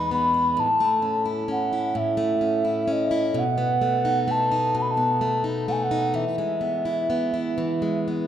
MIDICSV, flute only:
0, 0, Header, 1, 2, 480
1, 0, Start_track
1, 0, Key_signature, 4, "major"
1, 0, Tempo, 921659
1, 308, Time_signature, 6, 3, 24, 8
1, 2226, Tempo, 940439
1, 3666, Tempo, 975610
1, 4244, End_track
2, 0, Start_track
2, 0, Title_t, "Flute"
2, 0, Program_c, 0, 73
2, 0, Note_on_c, 0, 83, 79
2, 65, Note_off_c, 0, 83, 0
2, 70, Note_on_c, 0, 83, 77
2, 311, Note_on_c, 0, 81, 79
2, 319, Note_off_c, 0, 83, 0
2, 653, Note_off_c, 0, 81, 0
2, 790, Note_on_c, 0, 78, 68
2, 1027, Note_on_c, 0, 76, 70
2, 1035, Note_off_c, 0, 78, 0
2, 1521, Note_on_c, 0, 75, 75
2, 1529, Note_off_c, 0, 76, 0
2, 1765, Note_on_c, 0, 78, 85
2, 1773, Note_off_c, 0, 75, 0
2, 2245, Note_on_c, 0, 81, 75
2, 2252, Note_off_c, 0, 78, 0
2, 2474, Note_off_c, 0, 81, 0
2, 2488, Note_on_c, 0, 81, 66
2, 2502, Note_on_c, 0, 83, 63
2, 2510, Note_off_c, 0, 81, 0
2, 2550, Note_on_c, 0, 81, 69
2, 2558, Note_off_c, 0, 83, 0
2, 2816, Note_off_c, 0, 81, 0
2, 2946, Note_on_c, 0, 78, 65
2, 2965, Note_on_c, 0, 80, 57
2, 2973, Note_off_c, 0, 78, 0
2, 3024, Note_on_c, 0, 78, 62
2, 3031, Note_off_c, 0, 80, 0
2, 3186, Note_on_c, 0, 76, 69
2, 3194, Note_off_c, 0, 78, 0
2, 4148, Note_off_c, 0, 76, 0
2, 4244, End_track
0, 0, End_of_file